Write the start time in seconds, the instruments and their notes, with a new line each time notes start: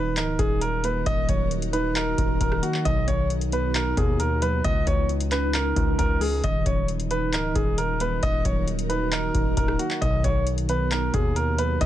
Already playing: 808-style bass D#1, synth keys D#3 F#3 D#4, ambient pad D#3 D#4 F#4 A#4, grand piano B4
0.17 808-style bass C#1, grand piano A#4, synth keys D#5, clap, closed hi-hat
0.39 808-style bass D#1, synth keys D#3, grand piano G#4, kick, closed hi-hat
0.61 grand piano A#4, closed hi-hat
0.84 synth keys A#3, grand piano B4, closed hi-hat
1.06 808-style bass D#1, synth keys D#3, grand piano D#5, kick, closed hi-hat
1.29 808-style bass D#1, synth keys F#3, grand piano C#5, kick, closed hi-hat
1.51 closed hi-hat
1.62 closed hi-hat
1.73 synth keys D#4, grand piano B4, closed hi-hat
1.96 grand piano A#4, synth keys D#5, clap, closed hi-hat
2.18 808-style bass D#1, synth keys D#3, kick, closed hi-hat
2.41 808-style bass D#1, grand piano A#4, kick, closed hi-hat
2.52 cross-stick
2.62 synth keys A#3, grand piano F#4, closed hi-hat
2.74 clap
2.85 808-style bass B1, synth keys B2, ambient pad B3, grand piano D#5, kick, closed hi-hat
3.08 808-style bass B1, synth keys D#3, grand piano C#5, kick, closed hi-hat
3.30 closed hi-hat
3.41 closed hi-hat
3.52 synth keys B3, grand piano B4, closed hi-hat
3.75 synth keys D#4, grand piano A#4, clap, closed hi-hat
3.97 808-style bass D#2, synth keys B2, grand piano G#4, kick, closed hi-hat
4.20 grand piano A#4, closed hi-hat
4.42 synth keys F#3, grand piano B4, closed hi-hat
4.64 808-style bass C#2, synth keys C#3, ambient pad C#3 E3 C#4, grand piano D#5, kick, closed hi-hat
4.86 808-style bass C#2, synth keys E3, grand piano C#5, kick, closed hi-hat
5.09 closed hi-hat
5.21 closed hi-hat
5.32 synth keys C#4, grand piano B4, clap, closed hi-hat
5.54 synth keys D#4, grand piano A#4, clap, closed hi-hat
5.76 808-style bass C#2, synth keys C#3, kick, closed hi-hat
5.99 808-style bass C#2, grand piano A#4, kick, closed hi-hat
6.21 synth keys G#3, grand piano G#4, open hi-hat
6.43 808-style bass D#1, synth keys D#3, ambient pad D#3 F#4 A#4, grand piano D#5, kick, closed hi-hat
6.66 808-style bass D#1, synth keys F#3, grand piano C#5, kick, closed hi-hat
6.88 closed hi-hat
7.00 closed hi-hat
7.11 synth keys D#4, grand piano B4, closed hi-hat
7.33 808-style bass C#1, grand piano A#4, synth keys D#5, clap, closed hi-hat
7.55 808-style bass D#1, synth keys D#3, grand piano G#4, kick, closed hi-hat
7.78 grand piano A#4, closed hi-hat
8.00 synth keys A#3, grand piano B4, closed hi-hat
8.22 808-style bass D#1, synth keys D#3, grand piano D#5, kick, closed hi-hat
8.45 808-style bass D#1, synth keys F#3, grand piano C#5, kick, closed hi-hat
8.68 closed hi-hat
8.79 closed hi-hat
8.89 synth keys D#4, grand piano B4, closed hi-hat
9.12 grand piano A#4, synth keys D#5, clap, closed hi-hat
9.35 808-style bass D#1, synth keys D#3, kick, closed hi-hat
9.57 808-style bass D#1, grand piano A#4, kick, closed hi-hat
9.68 cross-stick
9.79 synth keys A#3, grand piano F#4, closed hi-hat
9.91 clap
10.02 808-style bass B1, synth keys B2, ambient pad B3 D#4 F#4, grand piano D#5, kick, closed hi-hat
10.24 808-style bass B1, synth keys D#3, grand piano C#5, kick, closed hi-hat
10.47 closed hi-hat
10.58 closed hi-hat
10.69 synth keys B3, grand piano B4, closed hi-hat
10.91 synth keys D#4, grand piano A#4, clap, closed hi-hat
11.14 808-style bass D#2, synth keys B2, grand piano G#4, kick, closed hi-hat
11.36 grand piano A#4, closed hi-hat
11.58 synth keys F#3, grand piano B4, closed hi-hat
11.81 808-style bass C#2, synth keys C#3, grand piano D#5, kick, closed hi-hat